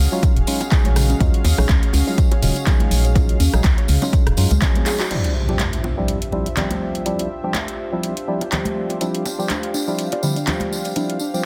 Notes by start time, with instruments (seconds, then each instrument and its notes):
Already playing: analog synth pad C#4 F#4 G#4 F5
0.12 synth stab F#3 G#3 C#4 D#4 F4, synth arpeggio sound C#5, tambourine
0.22 synth arpeggio sound C#4, kick, closed hi-hat, tambourine, high bongo
0.36 fm bass D#1, closed hi-hat
0.47 synth stab F#3 G#3 C#4 D#4 F4, synth arpeggio sound C#4, open hi-hat, tambourine
0.60 closed hi-hat, tambourine, high bongo
0.71 synth stab F#3 G#3 C#4 D#4 G#4, kick, clap, closed hi-hat, tambourine, low conga
0.85 fm bass A#1, synth arpeggio sound C#5, closed hi-hat, high conga
0.96 synth arpeggio sound C#3, cross-stick, open hi-hat, tambourine
1.09 synth arpeggio sound C#4, closed hi-hat, tambourine, high bongo
1.20 fm bass D#2, synth stab F#3 G#3 C#4 D#4 F4, synth arpeggio sound C#4, kick, closed hi-hat, tambourine
1.34 closed hi-hat
1.44 fm bass D#2, open hi-hat, tambourine, high bongo
1.58 fm bass A#1, synth stab F#3 G#3 C#4 D#4 G#4, synth arpeggio sound C#5, cross-stick, tambourine
1.69 fm bass C#2, synth arpeggio sound C#4, kick, clap, closed hi-hat, high conga
1.83 closed hi-hat
1.93 fm bass C#2, synth arpeggio sound C#4, open hi-hat, tambourine, high bongo
2.07 synth stab F#3 G#3 C#4 D#4 F4, tambourine
2.18 kick, closed hi-hat, tambourine
2.31 synth arpeggio sound C#5, closed hi-hat, high bongo
2.42 fm bass D#1, synth arpeggio sound C#3, synth stab F#3 G#3 C#4 D#4 F4, open hi-hat, tambourine
2.55 synth arpeggio sound C#4, closed hi-hat, tambourine
2.66 synth stab F#3 G#3 C#4 D#4 G#4, synth arpeggio sound C#4, kick, clap, closed hi-hat, low conga
2.80 closed hi-hat, high bongo, high conga
2.91 fm bass A#1, open hi-hat, tambourine
3.04 synth arpeggio sound C#5, closed hi-hat, tambourine
3.15 synth stab F#3 G#3 C#4 D#4 F4, synth arpeggio sound C#4, kick, closed hi-hat, tambourine, high bongo
3.29 closed hi-hat
3.40 fm bass D#2, synth arpeggio sound C#4, open hi-hat, tambourine
3.53 fm bass A#1, synth stab F#3 G#3 C#4 D#4 G#4, cross-stick, closed hi-hat, tambourine
3.64 fm bass C#2, kick, clap, closed hi-hat, tambourine, high bongo, high conga
3.78 synth arpeggio sound C#5, closed hi-hat
3.88 fm bass C#2, synth arpeggio sound C#3, open hi-hat, tambourine
4.02 synth stab F#3 G#3 C#4 D#4 F4, synth arpeggio sound C#4, tambourine, high bongo
4.13 synth arpeggio sound C#4, kick, closed hi-hat, tambourine
4.27 fm bass D#1, cross-stick, closed hi-hat
4.37 fm bass F#2, synth stab F#3 G#3 C#4 D#4 F4, open hi-hat, tambourine
4.50 fm bass C#2, synth arpeggio sound G#3, closed hi-hat, tambourine, high bongo, high conga
4.62 synth stab F#3 G#3 C#4 D#4 G#4, synth arpeggio sound C#4, kick, clap, closed hi-hat, low conga
4.75 synth arpeggio sound C4, closed hi-hat, high conga
4.86 synth arpeggio sound G#4, clap, open hi-hat, tambourine, high bongo
5.00 synth arpeggio sound F#4, clap, closed hi-hat, tambourine
5.10 synth stab F3 G3 C4 D4 E4, analog synth pad D4 F4 G4 C5 E5, closed hi-hat, crash, impact
5.24 closed hi-hat
5.48 synth stab F3 G3 C4 D4 G4, high bongo
5.59 clap, closed hi-hat, high conga
5.73 closed hi-hat
5.84 high bongo
5.97 synth stab F3 G3 C4 D4 E4
6.08 closed hi-hat
6.22 closed hi-hat
6.32 synth stab F3 G3 C4 D4 E4, high bongo
6.46 closed hi-hat
6.57 synth stab F3 G3 C4 D4 G4, clap, closed hi-hat, low conga
6.71 closed hi-hat, high bongo, high conga
6.95 closed hi-hat
7.06 synth stab F3 G3 C4 D4 E4, closed hi-hat
7.19 closed hi-hat, high bongo
7.43 synth stab F3 G3 C4 D4 G4
7.54 clap, closed hi-hat, high bongo, high conga
7.68 closed hi-hat
7.92 synth stab F3 G3 C4 D4 E4
8.03 closed hi-hat, high bongo
8.17 closed hi-hat
8.27 synth stab F3 G3 C4 D4 E4
8.41 closed hi-hat, high bongo
8.52 synth stab F3 G3 C4 D4 G4, clap, closed hi-hat, low conga
8.65 closed hi-hat, high conga
8.90 closed hi-hat, high bongo
9.01 synth stab F3 G3 C4 D4 E4, synth arpeggio sound D4, analog synth pad F5, closed hi-hat, tambourine
9.15 closed hi-hat
9.25 tambourine, high bongo
9.39 synth stab F3 G3 C4 D4 G4, synth arpeggio sound D5, tambourine
9.50 synth arpeggio sound D4, clap, closed hi-hat, tambourine, high conga
9.63 closed hi-hat
9.74 synth arpeggio sound D4, tambourine, high bongo
9.87 synth stab F3 G3 C4 D4 E4, tambourine
9.99 closed hi-hat, tambourine
10.12 synth arpeggio sound D5, closed hi-hat, high bongo
10.23 synth arpeggio sound D3, synth stab F3 G3 C4 D4 E4, tambourine
10.36 synth arpeggio sound D4, closed hi-hat, tambourine
10.47 synth stab F3 G3 C4 D4 G4, synth arpeggio sound D4, clap, closed hi-hat, tambourine, low conga
10.60 closed hi-hat, high bongo, high conga
10.73 tambourine
10.85 synth arpeggio sound D5, closed hi-hat, tambourine
10.96 synth stab F3 G3 C4 D4 E4, synth arpeggio sound D4, closed hi-hat, tambourine, high bongo
11.10 closed hi-hat
11.19 synth arpeggio sound D4, tambourine
11.34 synth stab F3 G3 C4 D4 G4, tambourine